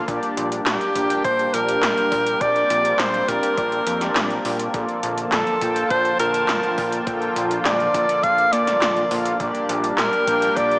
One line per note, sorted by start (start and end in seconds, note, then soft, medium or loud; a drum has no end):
0.00 9.36 A#3 medium
0.08 0.20 A#1 loud
0.08 0.92 A#2 medium
0.08 4.70 G3 medium
0.08 0.92 A#3 medium
0.08 0.92 D4 medium
0.08 2.39 D4 medium
0.08 0.92 G4 medium
0.08 0.92 D5 medium
0.08 kick loud
0.08 closed hi-hat medium
0.23 closed hi-hat soft
0.37 0.60 A#1 loud
0.37 closed hi-hat medium
0.52 closed hi-hat medium
0.66 0.78 A#1 loud
0.66 1.21 G4 medium
0.66 snare loud
0.66 clap medium
0.66 closed hi-hat medium
0.81 closed hi-hat soft
0.95 1.18 A#1 medium
0.95 2.38 A#2 loud
0.95 2.38 A#3 medium
0.95 2.37 D4 medium
0.95 2.37 G4 medium
0.95 2.38 G5 loud
0.95 kick medium
0.95 closed hi-hat medium
1.10 closed hi-hat medium
1.24 1.48 A#1 loud
1.24 1.55 C5 loud
1.24 kick loud
1.24 closed hi-hat medium
1.39 closed hi-hat soft
1.54 1.77 A#1 medium
1.54 2.43 A#4 loud
1.54 closed hi-hat loud
1.69 closed hi-hat medium
1.83 1.94 A#1 medium
1.83 snare loud
1.83 clap medium
1.83 closed hi-hat medium
1.97 closed hi-hat soft
2.12 2.35 A#1 medium
2.12 kick loud
2.12 open hi-hat medium
2.26 closed hi-hat medium
2.41 2.64 A#1 medium
2.41 3.25 A#2 medium
2.41 3.25 A#3 medium
2.41 4.72 C4 medium
2.41 3.25 D4 medium
2.41 3.25 G4 medium
2.41 3.01 D5 loud
2.41 3.25 G5 medium
2.41 kick loud
2.41 closed hi-hat medium
2.56 closed hi-hat soft
2.70 2.93 A#1 medium
2.70 closed hi-hat medium
2.85 closed hi-hat medium
2.99 3.22 A#1 loud
2.99 3.30 C5 loud
2.99 snare loud
2.99 clap medium
2.99 closed hi-hat medium
3.14 closed hi-hat soft
3.28 3.40 A#1 loud
3.28 3.84 A#2 medium
3.28 3.84 A#3 medium
3.28 3.84 D4 medium
3.28 3.84 G4 medium
3.28 4.45 A#4 loud
3.28 3.84 D5 medium
3.28 kick medium
3.28 closed hi-hat medium
3.43 closed hi-hat medium
3.58 3.81 A#1 medium
3.58 kick loud
3.58 closed hi-hat medium
3.72 closed hi-hat soft
3.87 4.10 F2 medium
3.87 3.98 A#2 medium
3.87 3.98 A#3 medium
3.87 3.98 D4 medium
3.87 3.98 G4 medium
3.87 3.98 G5 medium
3.87 closed hi-hat medium
4.01 4.70 A#2 loud
4.01 4.70 A#3 medium
4.01 4.70 D4 medium
4.01 4.70 G4 medium
4.01 4.70 D5 loud
4.01 snare soft
4.01 closed hi-hat medium
4.16 4.39 A#1 loud
4.16 snare loud
4.16 clap medium
4.16 closed hi-hat medium
4.30 closed hi-hat soft
4.45 4.68 A#1 loud
4.45 open hi-hat medium
4.59 closed hi-hat medium
4.74 4.86 A#1 loud
4.74 5.58 A#2 medium
4.74 9.36 D3 medium
4.74 9.36 F3 medium
4.74 5.58 A#3 medium
4.74 5.58 F4 medium
4.74 9.36 F4 loud
4.74 5.58 A4 medium
4.74 5.58 D5 medium
4.74 9.36 A5 medium
4.74 kick loud
4.74 closed hi-hat soft
4.89 closed hi-hat soft
5.03 5.26 A#1 medium
5.03 closed hi-hat medium
5.18 closed hi-hat medium
5.32 5.44 A#1 loud
5.32 5.87 A4 loud
5.32 snare loud
5.32 clap medium
5.32 closed hi-hat medium
5.47 closed hi-hat soft
5.61 5.84 A#1 medium
5.61 7.04 A#2 loud
5.61 7.04 A#3 medium
5.61 7.04 F4 medium
5.61 7.04 G5 loud
5.61 7.04 A5 medium
5.61 kick medium
5.61 closed hi-hat medium
5.76 closed hi-hat soft
5.90 6.14 A#1 loud
5.90 6.18 C5 loud
5.90 kick loud
5.90 closed hi-hat medium
6.05 closed hi-hat soft
6.19 6.43 A#1 medium
6.19 7.03 A#4 loud
6.19 closed hi-hat medium
6.34 closed hi-hat soft
6.49 6.60 A#1 medium
6.49 snare loud
6.49 clap medium
6.49 closed hi-hat soft
6.63 closed hi-hat soft
6.78 7.01 A#1 medium
6.78 kick loud
6.78 open hi-hat medium
6.92 closed hi-hat medium
7.07 7.30 A#1 medium
7.07 7.91 A#2 medium
7.07 7.91 A#3 medium
7.07 7.91 F4 medium
7.07 7.91 A4 medium
7.07 7.91 G5 medium
7.07 kick loud
7.07 closed hi-hat soft
7.22 closed hi-hat soft
7.36 7.59 A#1 medium
7.36 closed hi-hat medium
7.51 closed hi-hat medium
7.65 7.88 A#1 loud
7.65 8.25 D5 loud
7.65 snare loud
7.65 clap loud
7.65 closed hi-hat soft
7.80 closed hi-hat soft
7.94 8.06 A#1 loud
7.94 9.08 A#2 medium
7.94 9.08 A#3 medium
7.94 9.08 F4 medium
7.94 9.08 A4 medium
7.94 9.08 D5 medium
7.94 kick medium
7.94 closed hi-hat medium
8.09 closed hi-hat medium
8.23 8.47 A#1 medium
8.23 8.54 F5 loud
8.23 kick loud
8.23 closed hi-hat medium
8.38 closed hi-hat soft
8.52 8.76 A#2 medium
8.52 9.40 D5 loud
8.52 closed hi-hat medium
8.67 snare soft
8.67 closed hi-hat soft
8.82 9.05 A#1 medium
8.82 snare loud
8.82 clap loud
8.82 closed hi-hat medium
8.97 closed hi-hat soft
9.11 9.34 A#1 medium
9.11 9.37 A#2 medium
9.11 9.37 A#3 medium
9.11 9.36 F4 medium
9.11 9.37 A4 medium
9.11 9.37 F5 loud
9.11 open hi-hat medium
9.25 closed hi-hat soft
9.40 9.52 A#1 loud
9.40 10.24 A#2 medium
9.40 10.79 G3 medium
9.40 10.24 A#3 medium
9.40 10.79 A#3 medium
9.40 10.24 D4 medium
9.40 10.79 D4 loud
9.40 10.24 G4 medium
9.40 10.24 D5 medium
9.40 kick loud
9.40 closed hi-hat medium
9.55 closed hi-hat soft
9.69 9.92 A#1 loud
9.69 closed hi-hat medium
9.84 closed hi-hat medium
9.98 10.10 A#1 medium
9.98 10.58 A#4 loud
9.98 snare loud
9.98 clap loud
9.98 closed hi-hat medium
10.13 closed hi-hat soft
10.27 10.50 A#1 medium
10.27 10.79 A#2 loud
10.27 10.79 A#3 medium
10.27 10.79 D4 medium
10.27 10.79 G4 medium
10.27 10.79 G5 loud
10.27 kick medium
10.27 closed hi-hat medium
10.42 closed hi-hat medium
10.56 10.79 A#1 loud
10.56 10.79 D5 loud
10.56 kick loud
10.56 closed hi-hat medium
10.71 closed hi-hat soft